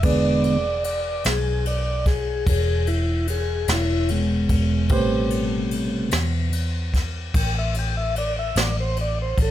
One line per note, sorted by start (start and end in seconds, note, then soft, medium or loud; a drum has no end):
0.03 1.21 E1 loud
0.03 0.58 D3 medium
0.03 0.57 G#3 medium
0.03 0.58 B3 medium
0.03 4.87 G#4 medium
0.03 4.87 B4 soft
0.03 4.87 D5 medium
0.03 0.43 D5 loud
0.03 kick loud
0.03 ride medium
0.44 0.84 D5 loud
0.44 ride medium
0.84 1.24 D5 medium
0.84 ride medium
1.24 2.43 B1 medium
1.24 1.65 G#4 loud
1.24 snare loud
1.24 ride medium
1.66 2.06 D5 medium
1.66 ride medium
2.06 2.46 G#4 medium
2.06 kick medium
2.06 snare soft
2.06 ride medium
2.46 3.65 E1 loud
2.46 2.88 G#4 medium
2.46 kick loud
2.46 ride medium
2.87 3.27 E4 medium
2.87 ride medium
3.27 3.69 G#4 loud
3.27 ride medium
3.68 4.46 E1 loud
3.68 snare loud
3.68 ride medium
3.72 4.10 E4 loud
4.09 6.50 B2 medium
4.09 4.89 G#3 loud
4.09 ride medium
4.49 4.90 E1 loud
4.49 kick medium
4.49 ride medium
4.89 6.08 A1 loud
4.89 6.09 C3 medium
4.89 6.10 G3 medium
4.89 9.51 G4 medium
4.89 9.51 B4 medium
4.89 9.51 C5 medium
4.89 kick loud
4.89 ride medium
4.94 6.10 A3 medium
5.30 ride medium
5.71 ride medium
6.11 7.31 E2 medium
6.11 snare loud
6.11 ride medium
6.53 ride medium
6.94 kick medium
6.94 snare soft
6.94 ride medium
7.34 8.53 A1 loud
7.34 7.55 G5 loud
7.34 kick loud
7.34 ride loud
7.59 7.76 E5 medium
7.74 ride medium
7.79 7.96 G5 medium
7.97 8.15 E5 medium
8.16 8.36 D5 medium
8.16 ride medium
8.39 8.57 E5 medium
8.56 9.34 A1 loud
8.56 8.76 D5 medium
8.56 snare loud
8.56 ride medium
8.80 8.98 C5 loud
8.96 ride medium
9.01 9.18 D5 loud
9.22 9.39 C5 medium
9.37 9.51 A1 medium
9.37 kick medium
9.37 ride medium
9.42 9.51 A4 medium